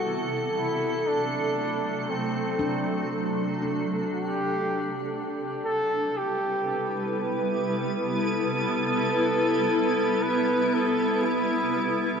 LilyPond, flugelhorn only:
\new Staff \with { instrumentName = "Flugelhorn" } { \time 4/4 \key c \lydian \tempo 4 = 59 fis'16 r16 e'8 d'4 c'4. r8 | g'4 r8 a'8 g'4 r4 | a'2 b'8 a'8 e'8. r16 | }